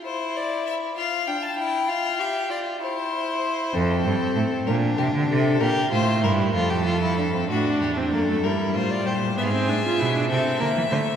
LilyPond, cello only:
\new Staff \with { instrumentName = "Cello" } { \clef bass \time 6/8 \key f \major \tempo 4. = 65 r2. | r2. | f,8 g,8 a,8 bes,8 c16 d16 c8 | bes,8 a,8 g,8 f,4. |
a,8 e,8 fis,8 g,8 a,8 bes,8 | gis,8 a,8 b,8 c8 d16 e16 d8 | }